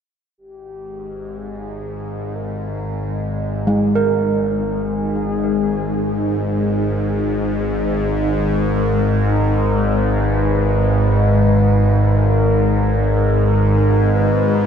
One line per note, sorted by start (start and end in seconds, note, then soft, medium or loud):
0.38 14.66 G#1 medium
0.38 14.66 G#2 medium
0.38 1.38 G4 medium
1.37 2.37 G#4 loud
2.36 3.83 A#4 medium
3.67 9.58 G#3 medium
3.95 9.86 A#4 medium
4.31 7.71 G#4 loud
8.24 10.21 A#4 loud
10.19 12.17 B4 loud
12.16 13.13 A#4 loud
13.14 14.16 A#4 loud
14.15 14.66 B4 medium